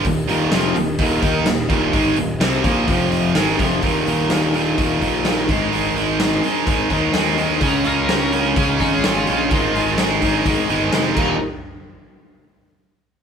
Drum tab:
CC |----------------|----------------|----------------|----------------|
HH |o-o-o-o-o-o-o-o-|o-o-o-o-o-o-o-o-|o-o-o-o-o-o-o-o-|o-o-o-o-o-o-o-o-|
SD |----o-------o---|----oo------o---|----o-------o---|----o-------o---|
BD |o-------o-o---o-|o-----o-o-----o-|o-------o-o---o-|--------o-o-----|

CC |----------------|--------------x-|----------------|
HH |o-o-o-o-o-o-o-o-|o-o-o-o-o-o-o---|----------------|
SD |----o-------o---|----o-------o---|----------------|
BD |o-------o-o-----|o-----o-o-----o-|----------------|